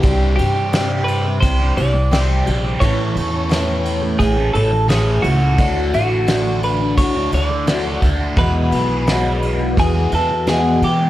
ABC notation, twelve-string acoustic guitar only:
X:1
M:4/4
L:1/8
Q:1/4=86
K:Dlyd
V:1 name="Twelve-string acoustic guitar"
[=C,=G,=CD=G] [CDG] [C,G,CDG]2 [G,CDG] [CDG] [C,G,CDG] [CDG] | [A,,E,A,CE] [A,CE] [A,,E,A,CE]2 [E,A,CE] [A,CE] [A,,E,A,CE] [A,CE] | [D,F,A,DE] [A,DE] [D,F,A,DE]2 [F,A,DE] [A,DE] [D,F,A,DE] [A,DE] | [E,,B,,F,G,B,E] [F,G,B,E] [E,,B,,F,G,B,E]2 [F,G,B,E] [F,B,E] [E,,B,,F,G,B,E] [G,B,E] |]